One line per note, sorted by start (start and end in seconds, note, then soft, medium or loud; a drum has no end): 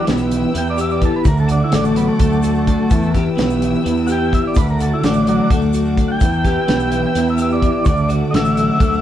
0.00 0.30 E3 medium
0.00 0.76 G4 medium
0.00 1.25 B4 medium
0.00 1.24 G5 medium
0.00 1.25 E6 medium
0.07 0.44 B1 medium
0.07 0.53 B3 medium
0.07 snare loud
0.07 closed hi-hat medium
0.17 shaker medium
0.31 1.26 E3 medium
0.31 closed hi-hat medium
0.54 1.09 E2 medium
0.54 1.26 B3 medium
0.54 0.67 G5 medium
0.54 closed hi-hat medium
0.66 0.80 D5 medium
0.66 shaker soft
0.77 1.25 G4 medium
0.77 0.91 E5 medium
0.77 closed hi-hat medium
0.77 shaker medium
0.90 1.02 D5 medium
0.90 shaker soft
1.01 1.26 E4 medium
1.01 1.15 A4 medium
1.01 kick medium
1.01 closed hi-hat medium
1.01 shaker soft
1.16 1.26 B4 medium
1.25 1.61 D2 loud
1.25 2.44 D3 medium
1.25 2.89 A4 medium
1.25 1.38 A#4 medium
1.25 2.89 F#5 medium
1.25 2.89 D6 medium
1.25 kick loud
1.25 closed hi-hat medium
1.25 shaker medium
1.37 1.50 A4 medium
1.37 shaker soft
1.48 1.62 D4 medium
1.48 2.42 F#4 medium
1.48 closed hi-hat medium
1.48 shaker soft
1.64 1.74 E4 medium
1.72 2.09 A1 medium
1.72 2.19 A3 medium
1.72 1.85 D4 loud
1.72 snare loud
1.72 closed hi-hat medium
1.84 1.96 A3 medium
1.84 shaker medium
1.95 2.90 F#3 medium
1.95 2.08 B3 medium
1.95 closed hi-hat medium
2.08 2.19 A3 medium
2.19 2.74 D2 medium
2.19 2.91 A3 medium
2.19 3.12 A3 loud
2.19 kick loud
2.19 closed hi-hat loud
2.32 shaker soft
2.43 2.91 F#4 medium
2.43 closed hi-hat medium
2.43 shaker medium
2.54 shaker soft
2.67 2.91 D4 medium
2.67 kick medium
2.67 closed hi-hat medium
2.67 shaker soft
2.90 3.27 E2 medium
2.90 3.60 E3 medium
2.90 4.54 B4 medium
2.90 4.54 G5 medium
2.90 4.54 E6 medium
2.90 kick loud
2.90 closed hi-hat medium
2.90 shaker medium
3.02 shaker soft
3.14 4.08 G4 medium
3.14 kick medium
3.14 snare soft
3.14 closed hi-hat medium
3.14 shaker soft
3.37 3.74 B1 medium
3.37 3.84 B3 medium
3.37 snare loud
3.37 closed hi-hat medium
3.37 shaker soft
3.50 shaker medium
3.61 4.56 E3 medium
3.61 closed hi-hat medium
3.74 shaker soft
3.85 4.39 E2 medium
3.85 4.56 B3 medium
3.85 closed hi-hat medium
3.97 shaker soft
4.07 4.56 G4 medium
4.07 4.09 F#5 medium
4.07 closed hi-hat medium
4.07 shaker medium
4.12 4.33 G5 medium
4.32 4.56 E4 medium
4.32 4.44 E5 medium
4.32 kick medium
4.32 closed hi-hat medium
4.47 4.57 D5 medium
4.55 4.92 D2 medium
4.55 5.74 D3 medium
4.55 6.20 A4 medium
4.55 4.68 B4 medium
4.55 6.20 F#5 medium
4.55 6.20 D6 medium
4.55 kick loud
4.55 closed hi-hat medium
4.55 shaker medium
4.68 4.80 A#4 medium
4.68 shaker soft
4.78 5.73 F#4 medium
4.78 4.92 A4 medium
4.78 closed hi-hat medium
4.78 shaker soft
4.93 5.03 E4 medium
5.03 5.39 A1 medium
5.03 5.50 A3 medium
5.03 5.27 D4 medium
5.03 snare loud
5.03 closed hi-hat medium
5.13 shaker medium
5.27 6.20 F#3 medium
5.27 5.50 F#3 medium
5.27 5.51 D4 loud
5.27 closed hi-hat medium
5.50 6.04 D2 medium
5.50 6.21 A3 medium
5.50 kick loud
5.50 closed hi-hat medium
5.62 shaker soft
5.73 6.21 F#4 medium
5.73 closed hi-hat medium
5.73 shaker medium
5.85 shaker soft
5.97 6.21 D4 medium
5.97 kick medium
5.97 closed hi-hat medium
5.97 shaker soft
6.08 6.10 F#5 medium
6.08 7.02 G5 loud
6.20 6.57 E2 medium
6.20 6.90 E3 medium
6.20 7.84 B4 medium
6.20 7.84 G5 medium
6.20 7.84 E6 medium
6.20 kick loud
6.20 closed hi-hat medium
6.20 shaker medium
6.33 shaker soft
6.44 7.36 G4 medium
6.44 kick medium
6.44 snare soft
6.44 closed hi-hat medium
6.44 shaker soft
6.67 7.04 B1 medium
6.67 7.14 B3 medium
6.67 snare loud
6.67 closed hi-hat medium
6.80 shaker medium
6.91 7.86 E3 medium
6.91 closed hi-hat medium
7.06 7.28 G5 medium
7.15 7.69 E2 medium
7.15 7.86 B3 medium
7.15 snare soft
7.15 closed hi-hat medium
7.27 7.40 E5 medium
7.27 shaker soft
7.38 7.85 G4 medium
7.38 closed hi-hat medium
7.38 shaker medium
7.42 7.51 E5 medium
7.51 7.86 D5 medium
7.51 shaker soft
7.62 7.86 E4 medium
7.62 kick medium
7.62 closed hi-hat medium
7.62 shaker soft
7.84 8.22 D2 medium
7.84 9.02 D3 medium
7.84 9.02 A4 medium
7.84 7.87 C#5 medium
7.84 9.02 F#5 medium
7.84 9.02 D6 medium
7.84 kick loud
7.84 closed hi-hat medium
7.84 shaker medium
7.89 8.10 D5 loud
7.97 shaker soft
8.09 9.02 F#4 medium
8.09 closed hi-hat medium
8.09 shaker soft
8.31 8.69 A1 medium
8.31 8.78 A3 medium
8.31 8.33 D#5 medium
8.31 closed hi-hat medium
8.35 9.02 E5 loud
8.35 snare loud
8.45 shaker medium
8.57 9.02 F#3 medium
8.57 closed hi-hat medium
8.79 9.02 D2 medium
8.79 9.02 A3 medium
8.79 kick loud
8.79 closed hi-hat medium
8.93 shaker soft